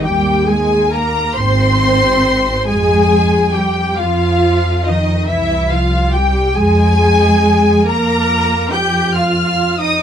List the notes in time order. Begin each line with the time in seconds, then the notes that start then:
0.03 D#2 G3 G4 G5
0.48 G#3 G#4 G#5
0.92 A#3 A#4 A#5
1.35 G#1 C4 C5 C6
2.67 F2 G#3 G#4 G#5
3.54 G3 G4 G5
3.98 F2 F3 F4 F5
4.86 D#3 D#4 D#5
5.27 C2 E3 E4 E5
5.70 F3 F4 F5
6.13 G3 G4 G5
6.56 F2 G#3 G#4 G#5
7.86 F2 A#3 A#4 A#5
8.72 G4 G5 G6
9.15 F4 F5 F6
9.79 D#4 D#5 D#6